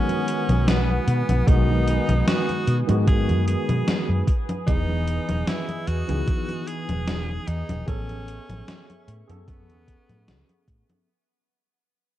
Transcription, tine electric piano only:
Already playing: D#3 G#3 B3 F#4
1.46 D#3 G#3 B3 F#4
2.87 D#3 G#3 B3 F#4
4.66 E3 B3 G#4 D#5
6.08 E3 B3 D#4 G#4
7.86 B3 C#4 G#4 A4
9.28 B3 C#4 G#4 A4

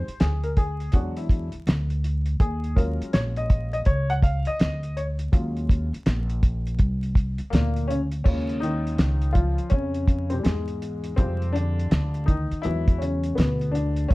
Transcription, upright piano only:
Already playing: C5
0.20 G#4
0.44 A#4
0.57 G#4
0.93 F#3 G#3 D4 F#4
1.17 E4
2.40 G#4
2.75 F#3 G#3 C#4 F4 A#4
3.13 C#5
3.37 D#5
3.73 D#5
3.86 C#5
4.10 F#5
4.23 F5
4.47 D#5
4.97 C#5
5.32 F#3 G#3 C#4 F4
7.50 A#2 A#3
7.88 C#3 C#4
8.24 C#3 G#3 A#3 C#4 F4
8.60 D#3 D#4
9.33 F3 F4
9.70 C#3 C#4
10.30 C3 C4
10.39 G3
10.43 G#2 G#3
11.16 C3 G3 G#3 C4 F4
11.53 D3 D4
12.26 D#3 D#4
12.62 E3 F#3 G#3 E4 F#4
12.98 C#3 C#4
13.35 B2 B3
13.71 D3 D4
14.08 F#3 G#3 C#4

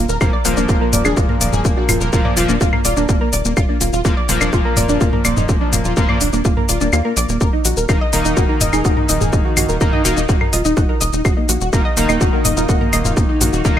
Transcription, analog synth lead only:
0.09 A#4
0.21 A#3
0.45 A#3
0.57 A#3
0.69 A#4
0.81 A#3
0.93 A#3
1.04 G#4
1.16 A#3
1.29 A#3
1.40 A#3
1.53 G#4
1.65 A#3
1.77 F#4
1.88 A#3
2.00 A#4
2.12 A#3
2.24 A#3
2.36 F4
2.49 A#3
2.60 A#3
2.73 A#3
2.85 F4
2.97 A#3
3.09 A#3
3.21 A#3
3.45 A#3
3.57 F4
3.69 A#3
3.81 A#3
3.93 F4
4.05 A#3
4.29 A#3
4.41 A#3
4.53 F4
4.65 A#3
4.77 A#3
4.89 D4
5.01 A#3
5.13 A#3
5.25 A#3
5.37 D#4
5.49 A#3
5.61 D4
5.73 A#3
5.85 F4
5.97 A#3
6.09 A#3
6.21 D4
6.33 A#3
6.45 A#3
6.57 A#3
6.69 F4
6.81 A#3
6.93 A#3
7.05 A#3
7.29 A#3
7.41 A#4
7.53 D#4
7.65 D#4
7.77 A#4
7.89 D#4
8.13 D#4
8.25 D#4
8.37 A#4
8.49 D#4
8.61 D#4
8.73 G#4
8.85 D#4
8.97 D#4
9.09 D#4
9.21 G#4
9.33 D#4
9.45 F#4
9.57 D#4
9.69 A#4
9.81 D#4
9.93 D#4
10.05 F#4
10.17 D#4
10.29 D#4
10.41 D#4
10.53 F4
10.65 D#4
10.77 D#4
10.89 D#4
11.13 D#4
11.25 F#4
11.37 A#3
11.49 A#3
11.61 F#4
11.73 A#3
11.97 A#3
12.09 A#3
12.21 F#4
12.33 A#3
12.45 A#3
12.57 F4
12.69 A#3
12.81 A#3
12.93 A#3
13.05 F4
13.17 A#3
13.29 D#4
13.41 A#3
13.53 F#4
13.65 A#3

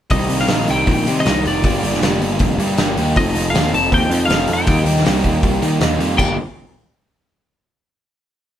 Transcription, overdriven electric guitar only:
0.10 C3 D#3 G3 D#4 G4
0.30 G3 D#4 G4
0.49 C3 D#3 G3 D#4 G4
1.06 G3 D#4 G4
1.26 D#3 G3 D#4 G4
1.44 G3 D#4 G4
1.64 G2 D3 G3 A#3 D4 G4
1.83 G3 A#3 D4 G4
2.02 G2 D3 G3 A#3 D4 G4
2.59 G3 A#3 D4 G4
2.77 G3 A#3 D4 G4
2.98 G3 A#3 D4 G4
3.17 F3 C4 D#4 A4
3.36 C4 D#4 A4
3.54 F3 C4 D#4 A4
4.12 C4 D#4 A4
4.31 F3 C4 D#4 A4
4.49 C4 D#4 A4
4.66 D#3 G3 A#3 D#4 G4
4.87 A#3 D#4 G4
5.05 D#3 G3 A#3 D#4 G4
5.62 A#3 D#4 G4
5.81 G3 A#3 D#4 G4
6.01 A#3 D#4 G4
6.20 G2 D3 G3 A#3 D4 G4

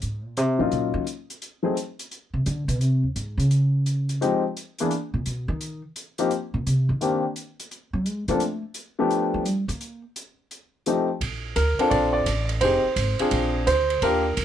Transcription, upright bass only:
0.03 G#2
0.25 A#2
0.37 C3
0.60 A2
0.72 A#2
0.94 D#3
2.34 C3
2.46 D3
2.68 B2
2.81 C3
3.03 D#2
3.16 G#2
3.38 C#3
5.14 A#2
5.26 B2
5.48 D#3
6.54 A#2
6.67 C3
6.89 D#3
7.93 F#3
8.06 G#3
8.28 A3
9.34 F3
9.46 G3
9.68 A#3
11.21 A#1
11.56 D2
11.79 muted upright bass stroke
11.91 A#1
12.26 A1
12.61 F1
12.84 muted upright bass stroke
12.96 G#1
13.20 muted upright bass stroke
13.31 A#1
13.67 D2
14.02 D#2
14.37 F2

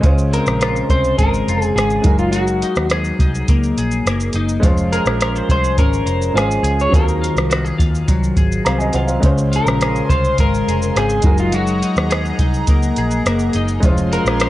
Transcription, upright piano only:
0.01 G#3 C#4 F4
0.05 C5
2.02 G#3 D#4 F#4
2.06 A#4
4.60 G#3 C#4 F4
4.64 C5
6.33 G#3 C#4 F4 C5
6.89 F#3 C4 F4
6.94 A#4
8.65 F5 A#5
8.78 D#5 G#5
8.93 C5 F#5
9.07 C5 F5
9.20 G#3 C#4 F4
9.24 C5
11.21 G#3 D#4 F#4
11.26 A#4
13.80 G#3 C#4 E4
13.85 C5
13.90 F4

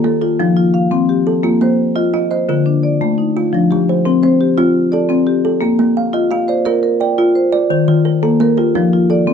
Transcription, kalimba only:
Already playing: G4 A4
0.04 A#3
0.22 A4
0.40 A#3 D#4
0.92 F3
1.27 A4
1.44 F4
1.61 A#3
1.96 D#5
2.14 F4
2.31 D#5
2.49 F4 A#4
3.02 D3
3.37 F4
3.54 D4
3.72 F3
3.89 C5
4.06 A#4
4.23 C4
4.58 C4 F4
4.93 A4
5.10 C4
5.45 A4
5.62 G4
5.79 A#3
5.97 F5
6.14 D#5
6.31 F4
6.49 D5
6.66 F4 A#4
7.01 D5
7.18 F4
7.52 D5
7.71 C5
7.88 D#3
8.05 A#4
8.23 A4
8.40 A#3
8.57 G4
8.75 A#3 D#4
9.10 A4
9.27 F3

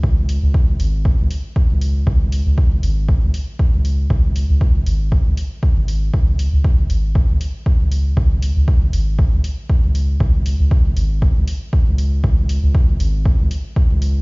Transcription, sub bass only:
0.03 C#2
0.43 C#2
0.80 G#1
1.19 C#2
1.70 C#2
2.07 C#2
2.46 C#2
2.83 G#1
3.23 C#2
3.73 C#2
4.10 C#2
4.50 C#2
4.87 G#1
5.26 C#2
5.77 G#1
6.14 C#2
6.53 C#2
6.90 G#1
7.29 C#2
7.80 C#2
8.17 C#2
8.56 C#2
8.93 G#1
9.33 C#2
9.84 C#2
10.20 C#2
10.60 C#2
10.97 G#1
11.36 C#2
11.87 C#2
12.24 C#2
12.63 C#2
13.00 G#1
13.40 C#2
13.90 C#2

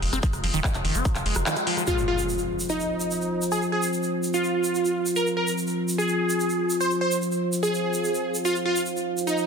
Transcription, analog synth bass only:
0.02 F1
0.13 F1
0.33 F1
0.44 F1
0.54 D#1
0.74 F1
0.85 F1
0.95 F1
1.15 F1
1.26 F1
1.36 F1

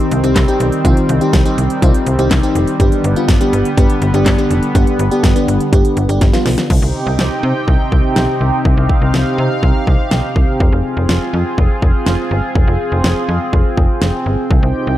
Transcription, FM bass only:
0.11 C2
0.24 C2
0.36 C2
0.60 B1
0.85 C2
1.09 C2
1.33 C2
1.58 C2
1.82 C2
2.07 C2
2.19 C2
2.31 C2
2.55 F1
2.80 G1
3.04 G1
3.28 G1
3.53 G1
3.78 G1
4.02 G1
4.14 G1
4.26 G1
4.51 F1
4.75 G1
4.99 G1
5.24 G1
5.48 G1
5.73 G1
5.97 G1
6.09 G1
6.22 G1
6.46 B1
6.70 C2
6.82 C2
7.07 C2
7.19 C2
7.43 C3
7.68 C2
7.92 C2
8.16 B1
8.41 C2
8.65 C2
8.77 C2
9.02 C2
9.14 C2
9.38 C3
9.63 C2
9.87 C2
10.11 B1
10.36 C2
10.60 F1
10.72 F1
10.97 F1
11.09 F1
11.33 F2
11.58 F1
11.82 F1
12.07 F1
12.31 G1
12.55 F1
12.68 F1
12.92 F1
13.04 F1
13.29 F2
13.53 F1
13.77 F1
14.02 F1
14.26 G1
14.51 C2
14.63 C2
14.87 C2

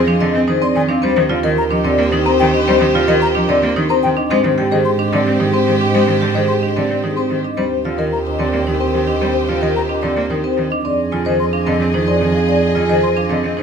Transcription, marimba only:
0.08 D4
0.21 C4
0.48 D#4
0.62 C4
0.89 D4
1.02 C4
1.30 F4
1.43 A#4
1.70 D4
1.84 C4
2.13 D#4
2.26 C4
2.54 D4
2.68 C4
2.95 F4
3.08 A#4
3.35 D4
3.49 C4
3.76 D#4
3.90 C4
4.17 D4
4.31 C4
4.58 G4
4.72 C5
4.99 D4
5.13 C4
5.40 D#4
5.54 C4
5.81 D4
5.94 C4
6.22 G4
6.35 C5
6.63 D4
6.76 C4
7.04 D#4
7.17 C4
7.45 D4
7.58 C4
7.85 F4
7.99 A#4
8.27 D4
8.40 C4
8.67 D#4
8.80 C4
9.08 D4
9.22 C4
9.49 F4
9.63 A#4
9.89 D4
10.03 C4
10.31 D#4
10.44 C4
10.72 D4
10.85 C4
11.13 F4
11.26 C5
11.53 D4
11.67 C4
11.94 D#4
12.08 C4
12.48 C4
12.75 F4
12.90 C5
13.17 D4
13.29 C4
13.57 D#4

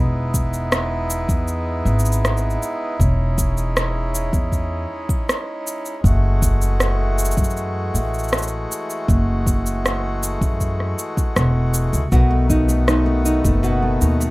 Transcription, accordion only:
Already playing: G#3 B3 D#4 E4
3.02 C#4
6.04 E3 A3 F#4
12.11 D#3 A3 B3

